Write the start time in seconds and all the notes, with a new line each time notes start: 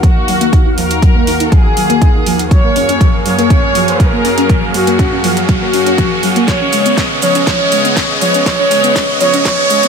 Already playing: D#2 D#3 A#3 F#4 F5, riser
0.03 F3 F#4, kick, closed hi-hat
0.28 F#3, open hi-hat
0.41 A#3, closed hi-hat
0.53 D#4, kick, closed hi-hat
0.66 D#4
0.78 F3 A#4, open hi-hat
0.91 closed hi-hat
1.02 F#3, kick, closed hi-hat
1.15 A#3
1.27 D#4, open hi-hat
1.40 D#4, closed hi-hat
1.52 F3 G#4, kick, closed hi-hat
1.77 F#3, open hi-hat
1.90 A#3, closed hi-hat
2.01 D#4, kick, closed hi-hat
2.15 D#4
2.26 F3, open hi-hat
2.39 closed hi-hat
2.51 F#2 F#3 G#4 C#5 F5, kick, closed hi-hat
2.64 A#3
2.76 C#4, open hi-hat
2.89 C#4, closed hi-hat
3.01 F3, kick, closed hi-hat
3.25 F#3 C#5, open hi-hat
3.38 A#3, closed hi-hat
3.50 kick, closed hi-hat
3.63 C#4
3.75 F3, open hi-hat
3.88 closed hi-hat
4.00 F#3 A#4, kick, closed hi-hat
4.13 A#3
4.25 C#4, open hi-hat
4.38 C#4, closed hi-hat
4.49 F3, kick, closed hi-hat
4.74 F#3 F#4, open hi-hat
4.87 A#3, closed hi-hat
4.99 C#4, kick, closed hi-hat
5.12 C#4
5.24 F3, open hi-hat
5.37 closed hi-hat
5.49 F#3 F#4, kick, closed hi-hat
5.62 A#3
5.73 C#4, open hi-hat
5.86 C#4, closed hi-hat
5.98 F3, kick, closed hi-hat
6.23 F#3, open hi-hat
6.36 A#3, closed hi-hat
6.48 C#3 F3 G#3 B3 C#5 D#5, kick, snare, closed hi-hat, shaker
6.61 C#4
6.73 G#3, open hi-hat, shaker
6.86 B3, closed hi-hat, shaker
6.97 C#4, kick, snare, closed hi-hat, shaker
7.22 F3 C#5, open hi-hat, shaker
7.35 C#4, closed hi-hat, shaker
7.47 F3 C#5, kick, snare, closed hi-hat, shaker
7.60 C#4
7.72 G#3, open hi-hat, shaker
7.85 B3, closed hi-hat, shaker
7.97 C#4, kick, snare, closed hi-hat, shaker
8.21 F3 C#5, open hi-hat, shaker
8.34 C#4, closed hi-hat, shaker
8.46 C#5, kick, snare, closed hi-hat, shaker
8.59 C#4
8.71 G#3, open hi-hat, shaker
8.84 B3, closed hi-hat, shaker
8.96 C#4, kick, snare, closed hi-hat, shaker
9.20 F3 C#5, open hi-hat, shaker
9.34 C#4, closed hi-hat, shaker
9.45 F3 C#5, kick, snare, closed hi-hat, shaker
9.58 C#4
9.70 G#3, open hi-hat, shaker
9.83 B3, closed hi-hat, shaker